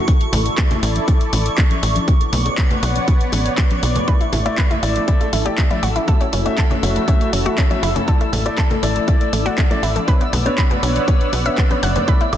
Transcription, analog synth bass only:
0.33 A1
0.83 A1
1.33 A1
1.83 A1
2.33 B1
2.83 B1
3.33 A1
3.83 B1
4.33 A1
4.83 A1
5.33 A1
5.83 A1
6.33 F#1
6.83 F#1
7.33 F#1
7.83 F#1
8.33 A1
8.83 A1
9.33 A1
9.83 A1
10.33 B1
10.83 B1
11.33 B1
11.83 F#1
12.33 A1

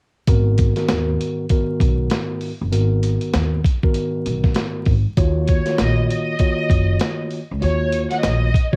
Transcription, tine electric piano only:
0.28 G#2 D#3 B3 F#4 A#4
0.75 G#2 D#3 B3 F#4 A#4
1.51 G#2 D#3 B3 F#4 A#4
2.71 G#2 D#3 B3 F#4 A#4
3.83 G#2 D#3 B3 F#4 A#4
5.17 D#3 A#3 F4 F#4 C#5
5.65 D#3 A#3 F4 F#4 C#5
6.40 D#3 A#3 F4 F#4 C#5
7.61 D#3 A#3 F4 F#4 C#5
8.72 D#3 A#3 F4 F#4

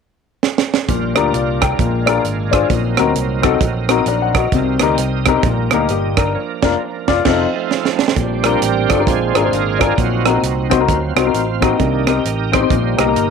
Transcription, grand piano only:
0.88 A#2
1.15 D4 F4 G4 A#4
1.34 F4 D5
1.61 A#4 G5
1.79 A#2
2.06 D4 F4 G#4 A#4
2.51 D4 F4 G#4 C5
2.70 A#2
2.98 C4 D#4 F#4 A#4
3.42 C4 D#4 F#4 A4
3.89 C4 D#4 F#4 A#4
4.08 D4 A#4 A#5
4.22 F#5
4.36 F#4 D#5
4.54 C3
4.80 C4 D#4 G4 A#4
5.26 C4 D#4 G4 A#4
5.45 A#2
5.72 A#3 D#4 G4 A#4
5.90 A#3 G4
6.18 D4 A#4
6.62 A#3 D4 F4 A#4
7.08 F4 D5
7.25 C4 D#4 F4 A4
8.16 A#2
8.44 D4 F4 G4 A#4
8.89 D4 F4 G4 A4
8.98 D4 F4 G4 A#4
9.08 A#2
9.34 D4 F4 G#4 A#4
9.43 D4 F4 G#4 C5
9.79 D4 F4 G#4 A#4
9.97 A#2
10.25 C4 D#4 F#4 A#4
10.70 C4 D#4 F#4 C5
10.78 C4 D#4 F#4 A#4
11.15 C4 D#4 F#4 C5
11.24 C4 D#4 F#4 A#4
11.60 C4 D#4 F#4 A#4
11.79 C3
12.06 C4 D#4 G4 A#4
12.52 C4 D#4 G4 C5
12.60 C4 D#4 G4 C5
12.70 A#2
12.97 A#3 D#4 G4 A#4
13.06 A#3 D#4 G4 A#4

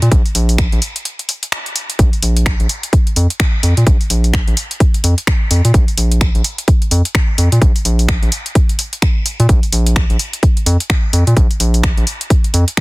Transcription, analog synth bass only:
0.02 A#2
0.12 A#1
0.35 A#1
0.73 A#1
1.99 A#1
2.23 A#1
2.60 A#1
3.16 F2
3.63 F2
3.77 A#2
3.87 A#1
4.10 A#1
4.48 A#1
5.04 F2
5.51 F2
5.65 A#2
5.74 A#1
5.98 A#1
6.35 A#1
6.91 F2
7.38 F2
7.52 A#2
7.62 A#1
7.85 A#1
8.23 A#1
9.40 A#2
9.49 A#1
9.73 A#1
10.10 A#1
10.66 F2
11.13 F2
11.27 A#2
11.37 A#1
11.60 A#1
11.97 A#1
12.54 F2

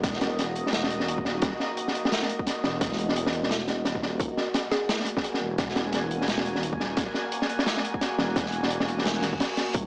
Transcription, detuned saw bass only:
Already playing: E1
1.08 D#1
1.42 D#1
2.64 E1
3.85 D#1
4.20 D#1
5.41 E1
6.62 D#1
6.97 D#1
8.19 E1
9.22 D#1
9.74 D#1

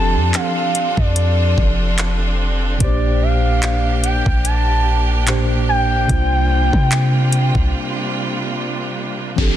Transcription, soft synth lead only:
Already playing: A5
0.34 F5
0.98 D5
2.81 D5
3.22 F5
4.04 G5
4.45 A5
5.69 G5

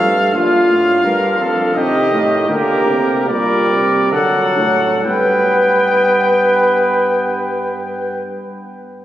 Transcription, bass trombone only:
0.00 G2
0.34 A#2
0.68 A2
1.03 G2
1.38 F2
1.74 C3
2.12 A2
2.49 D3
2.88 C3
3.28 A#2
3.69 C3
4.12 D3
4.57 A2
5.04 G2

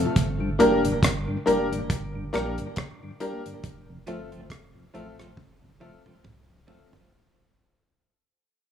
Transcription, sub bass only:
0.17 G1
0.60 F1
1.03 G1
1.47 F1
1.90 G1
2.34 A#1
3.64 F1
4.08 G1
4.50 F1
4.95 A1
5.38 F1
5.63 G1
5.82 F1
6.25 C2
6.69 G1

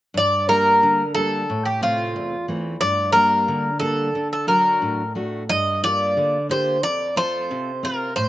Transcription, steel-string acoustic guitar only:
0.14 G2
0.48 G3 A#3 D4
0.83 D3
1.16 G3 A#3 D4
1.50 A2
1.81 C3 A3 C4
2.16 E2
2.48 E3 A3 C4
2.81 G2
3.14 G3 A#3 D4
3.48 D3
3.81 G3 A#3 D4
4.15 D3
4.47 F#3 D4 F#4
4.82 A2
5.15 A3 D4 F#4
5.50 G2
5.83 A#3 F4 G4
6.17 D3
6.49 A#3 F4 G4
6.83 F2
7.16 C4 F4 A4
7.51 C3
7.83 C4 F4 C5
8.17 A2

